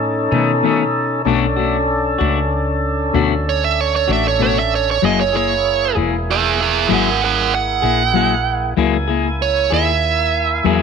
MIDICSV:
0, 0, Header, 1, 5, 480
1, 0, Start_track
1, 0, Tempo, 626305
1, 969, Time_signature, 12, 3, 24, 8
1, 8295, End_track
2, 0, Start_track
2, 0, Title_t, "Lead electric guitar"
2, 0, Program_c, 0, 29
2, 2676, Note_on_c, 0, 73, 85
2, 2793, Note_off_c, 0, 73, 0
2, 2793, Note_on_c, 0, 76, 66
2, 2917, Note_off_c, 0, 76, 0
2, 2917, Note_on_c, 0, 73, 62
2, 3021, Note_off_c, 0, 73, 0
2, 3035, Note_on_c, 0, 73, 72
2, 3139, Note_off_c, 0, 73, 0
2, 3163, Note_on_c, 0, 76, 72
2, 3264, Note_off_c, 0, 76, 0
2, 3280, Note_on_c, 0, 73, 70
2, 3382, Note_off_c, 0, 73, 0
2, 3399, Note_on_c, 0, 73, 89
2, 3501, Note_off_c, 0, 73, 0
2, 3520, Note_on_c, 0, 76, 73
2, 3622, Note_off_c, 0, 76, 0
2, 3643, Note_on_c, 0, 73, 71
2, 3743, Note_off_c, 0, 73, 0
2, 3763, Note_on_c, 0, 73, 69
2, 3863, Note_off_c, 0, 73, 0
2, 3877, Note_on_c, 0, 75, 75
2, 3980, Note_off_c, 0, 75, 0
2, 3990, Note_on_c, 0, 73, 77
2, 4096, Note_off_c, 0, 73, 0
2, 4113, Note_on_c, 0, 73, 73
2, 4567, Note_off_c, 0, 73, 0
2, 4833, Note_on_c, 0, 68, 58
2, 4837, Note_on_c, 0, 76, 75
2, 5056, Note_off_c, 0, 76, 0
2, 5060, Note_off_c, 0, 68, 0
2, 5070, Note_on_c, 0, 68, 60
2, 5078, Note_on_c, 0, 76, 77
2, 5282, Note_off_c, 0, 68, 0
2, 5296, Note_off_c, 0, 76, 0
2, 5310, Note_on_c, 0, 70, 59
2, 5316, Note_on_c, 0, 78, 69
2, 5523, Note_off_c, 0, 70, 0
2, 5535, Note_off_c, 0, 78, 0
2, 5548, Note_on_c, 0, 70, 70
2, 5554, Note_on_c, 0, 78, 78
2, 5761, Note_off_c, 0, 70, 0
2, 5774, Note_off_c, 0, 78, 0
2, 5783, Note_on_c, 0, 78, 79
2, 6705, Note_off_c, 0, 78, 0
2, 7219, Note_on_c, 0, 73, 73
2, 7445, Note_off_c, 0, 73, 0
2, 7461, Note_on_c, 0, 76, 86
2, 8295, Note_off_c, 0, 76, 0
2, 8295, End_track
3, 0, Start_track
3, 0, Title_t, "Tonewheel organ"
3, 0, Program_c, 1, 16
3, 0, Note_on_c, 1, 61, 63
3, 0, Note_on_c, 1, 63, 58
3, 0, Note_on_c, 1, 69, 57
3, 934, Note_off_c, 1, 63, 0
3, 937, Note_off_c, 1, 61, 0
3, 937, Note_off_c, 1, 69, 0
3, 957, Note_on_c, 1, 61, 58
3, 959, Note_on_c, 1, 62, 58
3, 961, Note_on_c, 1, 69, 56
3, 3815, Note_off_c, 1, 61, 0
3, 3816, Note_off_c, 1, 62, 0
3, 3817, Note_off_c, 1, 69, 0
3, 3854, Note_on_c, 1, 68, 62
3, 3856, Note_on_c, 1, 58, 59
3, 3857, Note_on_c, 1, 64, 57
3, 6698, Note_off_c, 1, 68, 0
3, 6699, Note_off_c, 1, 58, 0
3, 6700, Note_off_c, 1, 64, 0
3, 6718, Note_on_c, 1, 64, 58
3, 6720, Note_on_c, 1, 58, 62
3, 6723, Note_on_c, 1, 80, 57
3, 8295, Note_off_c, 1, 58, 0
3, 8295, Note_off_c, 1, 64, 0
3, 8295, Note_off_c, 1, 80, 0
3, 8295, End_track
4, 0, Start_track
4, 0, Title_t, "Clean electric guitar"
4, 0, Program_c, 2, 27
4, 241, Note_on_c, 2, 61, 49
4, 258, Note_on_c, 2, 57, 50
4, 265, Note_on_c, 2, 51, 48
4, 388, Note_off_c, 2, 61, 0
4, 397, Note_off_c, 2, 57, 0
4, 400, Note_off_c, 2, 51, 0
4, 482, Note_on_c, 2, 47, 65
4, 487, Note_on_c, 2, 51, 62
4, 494, Note_on_c, 2, 57, 62
4, 501, Note_on_c, 2, 61, 70
4, 629, Note_off_c, 2, 47, 0
4, 632, Note_off_c, 2, 51, 0
4, 635, Note_off_c, 2, 57, 0
4, 638, Note_off_c, 2, 61, 0
4, 963, Note_on_c, 2, 47, 74
4, 969, Note_on_c, 2, 57, 76
4, 974, Note_on_c, 2, 62, 85
4, 981, Note_on_c, 2, 66, 73
4, 1110, Note_off_c, 2, 47, 0
4, 1113, Note_off_c, 2, 57, 0
4, 1116, Note_off_c, 2, 62, 0
4, 1119, Note_off_c, 2, 66, 0
4, 1199, Note_on_c, 2, 66, 54
4, 1214, Note_on_c, 2, 62, 45
4, 1221, Note_on_c, 2, 57, 41
4, 1348, Note_off_c, 2, 66, 0
4, 1356, Note_off_c, 2, 62, 0
4, 1359, Note_off_c, 2, 57, 0
4, 1675, Note_on_c, 2, 66, 55
4, 1688, Note_on_c, 2, 62, 54
4, 1694, Note_on_c, 2, 57, 42
4, 1827, Note_off_c, 2, 66, 0
4, 1833, Note_off_c, 2, 62, 0
4, 1836, Note_off_c, 2, 57, 0
4, 2403, Note_on_c, 2, 47, 68
4, 2410, Note_on_c, 2, 57, 77
4, 2417, Note_on_c, 2, 62, 82
4, 2419, Note_on_c, 2, 66, 76
4, 2551, Note_off_c, 2, 47, 0
4, 2554, Note_off_c, 2, 57, 0
4, 2558, Note_off_c, 2, 62, 0
4, 2559, Note_off_c, 2, 66, 0
4, 3125, Note_on_c, 2, 66, 53
4, 3135, Note_on_c, 2, 62, 48
4, 3145, Note_on_c, 2, 57, 40
4, 3271, Note_off_c, 2, 66, 0
4, 3277, Note_off_c, 2, 62, 0
4, 3281, Note_off_c, 2, 57, 0
4, 3368, Note_on_c, 2, 47, 48
4, 3375, Note_on_c, 2, 57, 53
4, 3384, Note_on_c, 2, 62, 55
4, 3385, Note_on_c, 2, 66, 56
4, 3513, Note_off_c, 2, 47, 0
4, 3516, Note_off_c, 2, 57, 0
4, 3521, Note_off_c, 2, 62, 0
4, 3521, Note_off_c, 2, 66, 0
4, 3849, Note_on_c, 2, 54, 59
4, 3858, Note_on_c, 2, 58, 63
4, 3864, Note_on_c, 2, 64, 62
4, 3866, Note_on_c, 2, 68, 80
4, 3994, Note_off_c, 2, 54, 0
4, 3998, Note_off_c, 2, 58, 0
4, 4001, Note_off_c, 2, 64, 0
4, 4002, Note_off_c, 2, 68, 0
4, 4086, Note_on_c, 2, 68, 42
4, 4096, Note_on_c, 2, 64, 38
4, 4109, Note_on_c, 2, 58, 37
4, 4231, Note_off_c, 2, 68, 0
4, 4237, Note_off_c, 2, 64, 0
4, 4243, Note_off_c, 2, 58, 0
4, 4561, Note_on_c, 2, 68, 45
4, 4577, Note_on_c, 2, 64, 47
4, 4584, Note_on_c, 2, 58, 43
4, 4709, Note_off_c, 2, 68, 0
4, 4717, Note_off_c, 2, 64, 0
4, 4720, Note_off_c, 2, 58, 0
4, 5277, Note_on_c, 2, 54, 63
4, 5285, Note_on_c, 2, 58, 62
4, 5288, Note_on_c, 2, 64, 68
4, 5295, Note_on_c, 2, 68, 74
4, 5426, Note_off_c, 2, 54, 0
4, 5430, Note_off_c, 2, 58, 0
4, 5432, Note_off_c, 2, 64, 0
4, 5435, Note_off_c, 2, 68, 0
4, 5994, Note_on_c, 2, 68, 52
4, 6004, Note_on_c, 2, 64, 51
4, 6015, Note_on_c, 2, 58, 38
4, 6144, Note_off_c, 2, 68, 0
4, 6149, Note_off_c, 2, 64, 0
4, 6154, Note_off_c, 2, 58, 0
4, 6233, Note_on_c, 2, 54, 54
4, 6247, Note_on_c, 2, 58, 52
4, 6251, Note_on_c, 2, 64, 54
4, 6259, Note_on_c, 2, 68, 56
4, 6383, Note_off_c, 2, 54, 0
4, 6390, Note_off_c, 2, 58, 0
4, 6392, Note_off_c, 2, 64, 0
4, 6396, Note_off_c, 2, 68, 0
4, 6720, Note_on_c, 2, 54, 77
4, 6725, Note_on_c, 2, 58, 75
4, 6725, Note_on_c, 2, 64, 80
4, 6732, Note_on_c, 2, 68, 72
4, 6866, Note_off_c, 2, 54, 0
4, 6869, Note_off_c, 2, 58, 0
4, 6869, Note_off_c, 2, 64, 0
4, 6872, Note_off_c, 2, 68, 0
4, 6957, Note_on_c, 2, 68, 46
4, 6967, Note_on_c, 2, 64, 46
4, 6977, Note_on_c, 2, 58, 44
4, 7105, Note_off_c, 2, 68, 0
4, 7110, Note_off_c, 2, 64, 0
4, 7115, Note_off_c, 2, 58, 0
4, 7437, Note_on_c, 2, 68, 47
4, 7450, Note_on_c, 2, 64, 46
4, 7459, Note_on_c, 2, 58, 34
4, 7584, Note_off_c, 2, 68, 0
4, 7591, Note_off_c, 2, 64, 0
4, 7595, Note_off_c, 2, 58, 0
4, 8157, Note_on_c, 2, 54, 67
4, 8161, Note_on_c, 2, 58, 68
4, 8166, Note_on_c, 2, 64, 79
4, 8171, Note_on_c, 2, 68, 88
4, 8295, Note_off_c, 2, 54, 0
4, 8295, Note_off_c, 2, 58, 0
4, 8295, Note_off_c, 2, 64, 0
4, 8295, Note_off_c, 2, 68, 0
4, 8295, End_track
5, 0, Start_track
5, 0, Title_t, "Fretless electric bass"
5, 0, Program_c, 3, 35
5, 0, Note_on_c, 3, 45, 71
5, 222, Note_off_c, 3, 45, 0
5, 245, Note_on_c, 3, 47, 80
5, 946, Note_off_c, 3, 47, 0
5, 965, Note_on_c, 3, 35, 61
5, 1666, Note_off_c, 3, 35, 0
5, 1692, Note_on_c, 3, 37, 79
5, 2390, Note_off_c, 3, 37, 0
5, 2410, Note_on_c, 3, 38, 78
5, 3109, Note_off_c, 3, 38, 0
5, 3132, Note_on_c, 3, 33, 86
5, 3829, Note_off_c, 3, 33, 0
5, 3852, Note_on_c, 3, 30, 72
5, 4548, Note_off_c, 3, 30, 0
5, 4570, Note_on_c, 3, 28, 76
5, 5267, Note_off_c, 3, 28, 0
5, 5290, Note_on_c, 3, 32, 69
5, 5986, Note_off_c, 3, 32, 0
5, 6001, Note_on_c, 3, 34, 76
5, 6701, Note_off_c, 3, 34, 0
5, 6724, Note_on_c, 3, 37, 67
5, 7422, Note_off_c, 3, 37, 0
5, 7448, Note_on_c, 3, 39, 67
5, 8144, Note_off_c, 3, 39, 0
5, 8163, Note_on_c, 3, 40, 73
5, 8295, Note_off_c, 3, 40, 0
5, 8295, End_track
0, 0, End_of_file